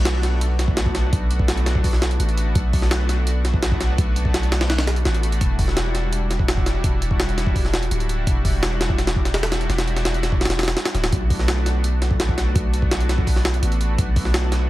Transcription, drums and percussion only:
0.05 snare loud
0.05 closed hi-hat medium
0.23 snare soft
0.23 closed hi-hat medium
0.41 closed hi-hat medium
0.59 snare soft
0.59 closed hi-hat medium
0.68 kick loud
0.77 snare loud
0.77 closed hi-hat medium
0.86 kick loud
0.95 snare medium
0.95 closed hi-hat medium
1.13 kick loud
1.13 closed hi-hat medium
1.31 closed hi-hat medium
1.39 kick loud
1.48 snare loud
1.48 closed hi-hat medium
1.57 closed hi-hat soft
1.66 snare medium
1.66 closed hi-hat medium
1.75 kick loud
1.84 kick medium
1.84 open hi-hat medium
1.93 snare soft
2.02 snare loud
2.02 closed hi-hat medium
2.11 closed hi-hat soft
2.20 closed hi-hat medium
2.29 closed hi-hat soft
2.37 closed hi-hat medium
2.55 kick loud
2.55 closed hi-hat medium
2.73 kick loud
2.73 open hi-hat medium
2.82 snare soft
2.91 snare loud
2.91 closed hi-hat medium
3.09 snare soft
3.09 closed hi-hat medium
3.27 closed hi-hat medium
3.45 snare soft
3.45 closed hi-hat medium
3.54 kick loud
3.63 snare loud
3.63 closed hi-hat medium
3.72 kick loud
3.80 snare medium
3.80 closed hi-hat medium
3.98 kick loud
3.98 closed hi-hat medium
4.16 closed hi-hat medium
4.25 kick loud
4.34 snare loud
4.34 closed hi-hat loud
4.43 closed hi-hat soft
4.52 snare loud
4.52 closed hi-hat medium
4.61 snare loud
4.61 closed hi-hat medium
4.70 snare loud
4.70 closed hi-hat medium
4.78 snare loud
4.78 closed hi-hat medium
4.87 snare loud
4.87 closed hi-hat medium
4.96 closed hi-hat soft
5.05 snare loud
5.05 closed hi-hat medium
5.14 closed hi-hat soft
5.23 closed hi-hat medium
5.32 closed hi-hat medium
5.41 kick loud
5.41 closed hi-hat medium
5.59 kick loud
5.59 open hi-hat medium
5.68 snare soft
5.77 snare loud
5.77 closed hi-hat medium
5.95 snare soft
5.95 closed hi-hat medium
6.13 closed hi-hat medium
6.31 snare soft
6.31 closed hi-hat medium
6.39 kick loud
6.48 snare loud
6.48 closed hi-hat medium
6.57 kick loud
6.66 snare medium
6.66 closed hi-hat medium
6.84 kick loud
6.84 closed hi-hat medium
7.02 closed hi-hat medium
7.11 kick loud
7.20 snare loud
7.20 closed hi-hat medium
7.29 closed hi-hat soft
7.38 snare medium
7.38 closed hi-hat medium
7.47 kick loud
7.56 kick medium
7.56 open hi-hat medium
7.65 snare soft
7.74 snare loud
7.74 closed hi-hat medium
7.83 closed hi-hat soft
7.91 closed hi-hat medium
8.00 closed hi-hat soft
8.09 closed hi-hat medium
8.27 kick loud
8.27 closed hi-hat medium
8.45 kick loud
8.45 open hi-hat medium
8.63 snare loud
8.63 closed hi-hat medium
8.81 snare loud
8.81 closed hi-hat medium
8.89 kick medium
8.98 snare medium
8.98 closed hi-hat medium
9.07 snare loud
9.07 closed hi-hat medium
9.16 kick medium
9.25 snare medium
9.25 closed hi-hat medium
9.34 snare loud
9.34 closed hi-hat medium
9.43 snare loud
9.43 closed hi-hat medium
9.52 snare loud
9.52 closed hi-hat medium
9.61 closed hi-hat soft
9.70 snare medium
9.70 closed hi-hat medium
9.78 snare loud
9.78 closed hi-hat medium
9.88 closed hi-hat soft
9.96 snare medium
9.96 closed hi-hat medium
10.05 snare loud
10.05 closed hi-hat loud
10.14 closed hi-hat soft
10.23 snare medium
10.23 closed hi-hat medium
10.32 kick medium
10.41 snare medium
10.41 closed hi-hat medium
10.45 snare medium
10.45 closed hi-hat medium
10.50 snare loud
10.50 closed hi-hat medium
10.59 snare medium
10.59 closed hi-hat medium
10.63 snare medium
10.63 closed hi-hat medium
10.68 snare loud
10.68 closed hi-hat medium
10.77 snare loud
10.77 closed hi-hat medium
10.85 snare loud
10.85 closed hi-hat medium
10.95 snare soft
10.95 closed hi-hat medium
11.04 snare loud
11.04 closed hi-hat medium
11.12 kick loud
11.12 closed hi-hat medium
11.30 kick loud
11.30 open hi-hat medium
11.39 snare soft
11.48 snare loud
11.48 closed hi-hat medium
11.66 snare soft
11.66 closed hi-hat medium
11.84 closed hi-hat medium
12.02 snare soft
12.02 closed hi-hat medium
12.11 kick medium
12.20 snare loud
12.20 closed hi-hat medium
12.29 kick loud
12.38 snare medium
12.38 closed hi-hat medium
12.55 kick loud
12.55 closed hi-hat medium
12.74 closed hi-hat medium
12.82 kick loud
12.91 snare loud
12.91 closed hi-hat medium
13.00 closed hi-hat soft
13.09 snare medium
13.09 closed hi-hat medium
13.18 kick loud
13.27 kick medium
13.27 open hi-hat medium
13.36 snare soft
13.45 snare loud
13.45 closed hi-hat medium
13.54 closed hi-hat soft
13.63 closed hi-hat medium
13.72 closed hi-hat soft
13.81 closed hi-hat medium
13.98 kick loud
13.98 closed hi-hat medium
14.16 kick loud
14.16 open hi-hat medium
14.25 snare soft
14.34 snare loud
14.34 closed hi-hat medium
14.52 snare soft
14.52 closed hi-hat medium

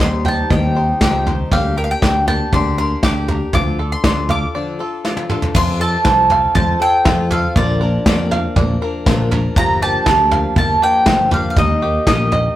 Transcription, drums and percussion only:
0.00 kick medium
0.00 snare medium
0.25 floor tom medium
0.50 kick medium
0.50 floor tom medium
1.01 kick loud
1.01 snare loud
1.26 floor tom medium
1.51 kick medium
1.51 floor tom loud
2.02 kick loud
2.02 snare medium
2.28 floor tom medium
2.53 kick medium
2.53 floor tom medium
3.03 kick loud
3.03 snare loud
3.28 floor tom medium
3.53 kick medium
3.53 floor tom loud
4.04 kick loud
4.04 snare medium
4.29 floor tom medium
5.05 snare medium
5.17 high tom medium
5.29 mid tom medium
5.42 floor tom medium
5.54 kick loud
5.54 floor tom loud
5.54 crash loud
6.05 kick loud
6.05 snare loud
6.30 floor tom medium
6.55 kick loud
6.55 floor tom loud
7.05 kick loud
7.05 snare loud
7.31 floor tom medium
7.56 kick loud
7.56 floor tom loud
8.06 kick loud
8.06 snare loud
8.31 floor tom medium
8.56 kick loud
8.56 floor tom loud
9.06 kick loud
9.06 snare loud
9.31 floor tom medium
9.56 kick loud
9.56 floor tom loud
10.06 kick loud
10.06 snare loud
10.31 floor tom medium
10.56 kick loud
10.56 floor tom loud
11.06 kick loud
11.06 snare loud
11.31 floor tom medium
11.57 kick loud
11.57 floor tom loud
12.07 kick loud
12.07 snare loud
12.32 floor tom medium

